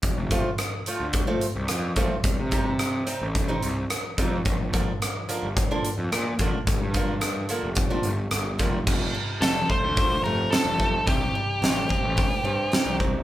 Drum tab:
CC |--------|--------|--------|--------|
HH |xxxxxxxx|xxxxxxxx|xxxxxxxx|xxxxxxxx|
SD |--r---r-|--r---r-|--r---r-|--r---r-|
BD |oo--o--o|oo--o--o|oo--o--o|oo--o--o|

CC |x-------|--------|
HH |--o-o-o-|o-o-o-o-|
SD |--o---o-|--o---o-|
BD |o--oo--o|o--oo--o|